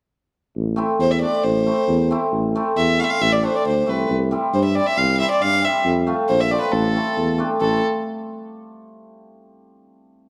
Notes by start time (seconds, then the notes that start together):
0.56 A1
0.76 A3 C4 E4
0.99 E2 C5
1.11 E5
1.21 A3 C4 D4 D5
1.44 A1 C5
1.66 A3 C4 E4
1.88 E2
2.11 A3 C4 E4
2.32 A1
2.56 A3 C4 E4
2.77 E2 E5
2.99 A3 C4 E4 F5
3.04 E5
3.10 F5
3.21 A1 E5
3.32 D5
3.42 A3 C4 D4 C5
3.56 D5
3.65 D2 C5
3.86 C2 A3 C4 E4 B4
4.09 C2
4.31 G3 C4 E4
4.54 G2 C5
4.65 E5
4.75 G3 C4 E4 D5
4.86 E5
4.97 C2 F5
5.19 G3 C4 E4 E5
5.31 D5
5.41 G2 F5
5.62 G3 C4 E4 E5
5.85 F2
6.07 A3 C4 F4
6.29 A#1 C5
6.40 E5
6.51 A3 C4 F4 D5
6.61 B4
6.72 A1 A4
6.95 A3 C4 E4
7.16 E2
7.38 A3 C4 D4
7.60 A1 A3 C4 E4 A4